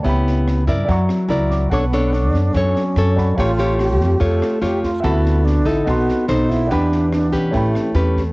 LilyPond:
<<
  \new Staff \with { instrumentName = "Grand piano" } { \time 4/4 \key b \minor \tempo 4 = 144 << { r4. e''8 fis''4 ais''8 d'''8 | r1 | r1 | r1 |
r1 | } \\ { <cis'' e'' g'' b''>2 <d'' e'' ais'' cis'''>2 | <fis'' a'' cis'''>2.~ <fis'' a'' cis'''>8 <d'' fis'' a'' b''>8 | <cis'' eis'' g'' bis''>1 | <e'' fis'' a'' b''>2 <dis'' fis'' a'' c'''>2 |
<d'' fis'' g'' b''>2 <cis'' e'' g'' b''>2 | } >> }
  \new Staff \with { instrumentName = "Nylon-string guitar" } { \time 4/4 \key b \minor << { <b e' g'>4. <e' bes' d''>4. <e' ais' d''>4 | <d' a' cis''>8 <d' a' cis''>4. <d' a' cis''>8 r8 <a' cis''>4 | <eis' g' cis''>8 <eis' g' cis''>4. <eis' g' cis''>4 <eis' g' cis''>8 r8 | <b fis' a'>4. <ees' a'>4. <dis' a' c''>4 |
<d' g' b'>4. <cis' g' b'>4. <cis' g' b'>8 r8 | } \\ { cis2 fis2 | b2 fis2 | a2 a2 | d2 b2 |
e2 a2 | } >> }
  \new Staff \with { instrumentName = "Alto flute" } { \time 4/4 \key b \minor r1 | b4 d'4 cis'2 | eis'4 g'4 a'4 g'8 eis'8 | e'4 d'8 e'8 fis'4 dis'8 e'8 |
d'4 d'4 e'4. r8 | }
  \new Staff \with { instrumentName = "Upright bass" } { \clef bass \time 4/4 \key b \minor cis,4. g,8 fis,8 r8 cis,4 | b,,4. fis,8 fis,8 r8 fis,4 | a,,4. eis,8 eis,8 r8 eis,4 | d,4. a,,8 b,,8 r8 b,,4 |
e,4. b,,8 a,,8 r8 e,4 | }
  \new DrumStaff \with { instrumentName = "Drums" } \drummode { \time 4/4 <bd sn>8 sn8 <ss sn>8 <bd sn>8 <bd sn>8 <ss sn>8 sn8 <bd sn>8 | <bd ss sn>8 sn8 sn8 <bd sn>8 <bd ss sn>8 sn8 <ss sn>8 <bd sn>8 | <bd sn>8 sn8 <ss sn>8 <bd sn>8 <bd sn>8 <ss sn>8 sn8 <bd sn>8 | <bd ss sn>8 sn8 sn8 <bd sn>8 <bd ss sn>8 sn8 <ss sn>8 <bd sn>8 |
<bd sn>8 sn8 <ss sn>8 <bd sn>8 <bd sn>8 <ss sn>8 sn8 <bd sn>8 | }
>>